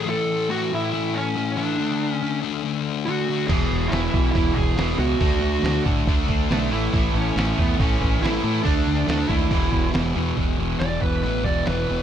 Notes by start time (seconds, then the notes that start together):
0.05 A2 E3 A3
0.10 A4
0.50 A2 E3 A3 F#4
0.71 A2 E3 A3 E4
0.92 A2 E3 A3
1.14 C#4
1.36 A2 E3 A3
1.57 A2 E3 A3 D4
1.78 D3 A3 D4
2.12 C#4
2.22 D3 A3 D4
2.42 D3 A3 D4
2.63 D3 A3 D4
3.05 D3 A3 D4 F#4
3.28 D3 A3 D4
3.47 E1 E2 B2 G#4, kick, crash
3.52 E3
3.71 E1
3.88 E1 E4, open hi-hat
3.93 E2 B2 E3, snare
4.14 B1 E2 B2 E3, kick
4.32 E1 E2 E4, kick, open hi-hat
4.36 B2 E3
4.54 E1 E3 G#4, kick
4.58 E2 B2
4.76 E1 E2 B2, snare, open hi-hat
4.80 E3
4.98 C#2 E2 B2 E3 F#4
5.20 D2 D3 A3 D4, kick, open hi-hat
5.41 D2
5.63 D2 D3 A3 D4, snare, open hi-hat
5.86 A2 D3 A3 D4, kick
6.06 D2 D3 A3 D4, kick, open hi-hat
6.28 D2 D3 A3 D4, kick
6.50 B1 D3 A3 D4, snare, open hi-hat
6.71 A1 A2 E3 A3 E4
6.93 A1 A2 E3 A3, kick, open hi-hat
7.14 A1 C#4
7.36 A1 A2 E3 A3, snare, open hi-hat
7.57 E2 A2 E3 A3, kick
7.62 B3
7.79 A1 A2 E3 A3 C#4, kick, open hi-hat
7.99 A1 A2 E3 A3, kick
8.21 A1 A2 E3 A3 E4, open hi-hat
8.26 snare
8.44 A2 E3 A3
8.63 D2 D3 A3 D4, kick, open hi-hat
8.87 D2
9.08 D2 D3 A3 D4, snare, open hi-hat
9.28 D#2 D3 A3 D4 E4, kick
9.51 E1 E2 B2 E3, kick, open hi-hat
9.73 E1, kick
9.94 E1 E2 B2 E3, snare, open hi-hat
10.16 E2 B2 E3
10.37 E1 E2 B2 E3, kick, open hi-hat
10.58 E1 E2 B2 E3
10.79 E1 E2 B2 E3 D5, snare, open hi-hat
11.01 E1 E2 B2 E3 B4, kick
11.23 A1 E2 B2 E3 B4, open hi-hat
11.44 E1 E2 B2 E3 D5, kick
11.66 E1 E2 B2 E3 B4, snare, open hi-hat
11.78 snare
11.90 E1 E2 B2 E3